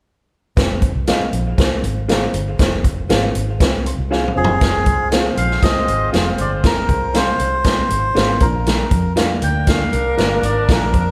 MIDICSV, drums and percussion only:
0, 0, Header, 1, 2, 480
1, 0, Start_track
1, 0, Tempo, 505902
1, 539, Time_signature, 4, 2, 24, 8
1, 10541, End_track
2, 0, Start_track
2, 0, Title_t, "Drums"
2, 541, Note_on_c, 9, 36, 106
2, 541, Note_on_c, 9, 42, 77
2, 551, Note_on_c, 9, 38, 104
2, 636, Note_off_c, 9, 36, 0
2, 636, Note_off_c, 9, 42, 0
2, 646, Note_off_c, 9, 38, 0
2, 776, Note_on_c, 9, 42, 58
2, 778, Note_on_c, 9, 36, 87
2, 871, Note_off_c, 9, 42, 0
2, 873, Note_off_c, 9, 36, 0
2, 1018, Note_on_c, 9, 42, 102
2, 1024, Note_on_c, 9, 38, 98
2, 1113, Note_off_c, 9, 42, 0
2, 1119, Note_off_c, 9, 38, 0
2, 1260, Note_on_c, 9, 42, 66
2, 1355, Note_off_c, 9, 42, 0
2, 1500, Note_on_c, 9, 42, 88
2, 1501, Note_on_c, 9, 36, 92
2, 1515, Note_on_c, 9, 38, 112
2, 1595, Note_off_c, 9, 42, 0
2, 1596, Note_off_c, 9, 36, 0
2, 1610, Note_off_c, 9, 38, 0
2, 1743, Note_on_c, 9, 42, 74
2, 1838, Note_off_c, 9, 42, 0
2, 1985, Note_on_c, 9, 42, 74
2, 1992, Note_on_c, 9, 38, 118
2, 2080, Note_off_c, 9, 42, 0
2, 2087, Note_off_c, 9, 38, 0
2, 2218, Note_on_c, 9, 42, 72
2, 2313, Note_off_c, 9, 42, 0
2, 2459, Note_on_c, 9, 42, 82
2, 2461, Note_on_c, 9, 36, 103
2, 2469, Note_on_c, 9, 38, 93
2, 2554, Note_off_c, 9, 42, 0
2, 2556, Note_off_c, 9, 36, 0
2, 2564, Note_off_c, 9, 38, 0
2, 2698, Note_on_c, 9, 36, 86
2, 2699, Note_on_c, 9, 42, 63
2, 2793, Note_off_c, 9, 36, 0
2, 2793, Note_off_c, 9, 42, 0
2, 2940, Note_on_c, 9, 42, 91
2, 2946, Note_on_c, 9, 38, 108
2, 3035, Note_off_c, 9, 42, 0
2, 3041, Note_off_c, 9, 38, 0
2, 3178, Note_on_c, 9, 42, 67
2, 3273, Note_off_c, 9, 42, 0
2, 3419, Note_on_c, 9, 36, 90
2, 3419, Note_on_c, 9, 42, 91
2, 3434, Note_on_c, 9, 38, 111
2, 3514, Note_off_c, 9, 36, 0
2, 3514, Note_off_c, 9, 42, 0
2, 3529, Note_off_c, 9, 38, 0
2, 3664, Note_on_c, 9, 42, 79
2, 3758, Note_off_c, 9, 42, 0
2, 3910, Note_on_c, 9, 38, 51
2, 4005, Note_off_c, 9, 38, 0
2, 4058, Note_on_c, 9, 45, 55
2, 4153, Note_off_c, 9, 45, 0
2, 4216, Note_on_c, 9, 43, 99
2, 4311, Note_off_c, 9, 43, 0
2, 4375, Note_on_c, 9, 42, 80
2, 4378, Note_on_c, 9, 36, 110
2, 4384, Note_on_c, 9, 38, 101
2, 4470, Note_off_c, 9, 42, 0
2, 4472, Note_off_c, 9, 36, 0
2, 4479, Note_off_c, 9, 38, 0
2, 4610, Note_on_c, 9, 42, 63
2, 4615, Note_on_c, 9, 36, 84
2, 4705, Note_off_c, 9, 42, 0
2, 4710, Note_off_c, 9, 36, 0
2, 4856, Note_on_c, 9, 42, 96
2, 4862, Note_on_c, 9, 38, 108
2, 4951, Note_off_c, 9, 42, 0
2, 4957, Note_off_c, 9, 38, 0
2, 5098, Note_on_c, 9, 42, 75
2, 5193, Note_off_c, 9, 42, 0
2, 5225, Note_on_c, 9, 38, 35
2, 5320, Note_off_c, 9, 38, 0
2, 5336, Note_on_c, 9, 42, 82
2, 5338, Note_on_c, 9, 36, 97
2, 5351, Note_on_c, 9, 38, 118
2, 5431, Note_off_c, 9, 42, 0
2, 5433, Note_off_c, 9, 36, 0
2, 5446, Note_off_c, 9, 38, 0
2, 5580, Note_on_c, 9, 42, 76
2, 5675, Note_off_c, 9, 42, 0
2, 5821, Note_on_c, 9, 42, 81
2, 5829, Note_on_c, 9, 38, 93
2, 5916, Note_off_c, 9, 42, 0
2, 5924, Note_off_c, 9, 38, 0
2, 6054, Note_on_c, 9, 42, 69
2, 6149, Note_off_c, 9, 42, 0
2, 6297, Note_on_c, 9, 42, 80
2, 6299, Note_on_c, 9, 36, 96
2, 6307, Note_on_c, 9, 38, 97
2, 6392, Note_off_c, 9, 42, 0
2, 6394, Note_off_c, 9, 36, 0
2, 6402, Note_off_c, 9, 38, 0
2, 6534, Note_on_c, 9, 42, 61
2, 6536, Note_on_c, 9, 36, 85
2, 6629, Note_off_c, 9, 42, 0
2, 6631, Note_off_c, 9, 36, 0
2, 6779, Note_on_c, 9, 42, 93
2, 6785, Note_on_c, 9, 38, 105
2, 6874, Note_off_c, 9, 42, 0
2, 6880, Note_off_c, 9, 38, 0
2, 7016, Note_on_c, 9, 42, 73
2, 7111, Note_off_c, 9, 42, 0
2, 7252, Note_on_c, 9, 42, 90
2, 7257, Note_on_c, 9, 36, 92
2, 7267, Note_on_c, 9, 38, 111
2, 7347, Note_off_c, 9, 42, 0
2, 7351, Note_off_c, 9, 36, 0
2, 7362, Note_off_c, 9, 38, 0
2, 7499, Note_on_c, 9, 42, 68
2, 7594, Note_off_c, 9, 42, 0
2, 7745, Note_on_c, 9, 42, 71
2, 7753, Note_on_c, 9, 38, 109
2, 7840, Note_off_c, 9, 42, 0
2, 7848, Note_off_c, 9, 38, 0
2, 7973, Note_on_c, 9, 42, 71
2, 7978, Note_on_c, 9, 36, 97
2, 8067, Note_off_c, 9, 42, 0
2, 8073, Note_off_c, 9, 36, 0
2, 8221, Note_on_c, 9, 42, 73
2, 8231, Note_on_c, 9, 38, 100
2, 8316, Note_off_c, 9, 42, 0
2, 8326, Note_off_c, 9, 38, 0
2, 8454, Note_on_c, 9, 42, 65
2, 8456, Note_on_c, 9, 36, 89
2, 8549, Note_off_c, 9, 42, 0
2, 8551, Note_off_c, 9, 36, 0
2, 8697, Note_on_c, 9, 42, 92
2, 8703, Note_on_c, 9, 38, 101
2, 8792, Note_off_c, 9, 42, 0
2, 8798, Note_off_c, 9, 38, 0
2, 8937, Note_on_c, 9, 42, 71
2, 9031, Note_off_c, 9, 42, 0
2, 9174, Note_on_c, 9, 42, 92
2, 9179, Note_on_c, 9, 36, 95
2, 9189, Note_on_c, 9, 38, 112
2, 9269, Note_off_c, 9, 42, 0
2, 9274, Note_off_c, 9, 36, 0
2, 9284, Note_off_c, 9, 38, 0
2, 9419, Note_on_c, 9, 42, 75
2, 9514, Note_off_c, 9, 42, 0
2, 9661, Note_on_c, 9, 42, 72
2, 9669, Note_on_c, 9, 38, 96
2, 9756, Note_off_c, 9, 42, 0
2, 9764, Note_off_c, 9, 38, 0
2, 9897, Note_on_c, 9, 42, 76
2, 9992, Note_off_c, 9, 42, 0
2, 10139, Note_on_c, 9, 42, 82
2, 10140, Note_on_c, 9, 36, 108
2, 10149, Note_on_c, 9, 38, 108
2, 10234, Note_off_c, 9, 42, 0
2, 10235, Note_off_c, 9, 36, 0
2, 10244, Note_off_c, 9, 38, 0
2, 10375, Note_on_c, 9, 42, 57
2, 10378, Note_on_c, 9, 36, 86
2, 10470, Note_off_c, 9, 42, 0
2, 10473, Note_off_c, 9, 36, 0
2, 10541, End_track
0, 0, End_of_file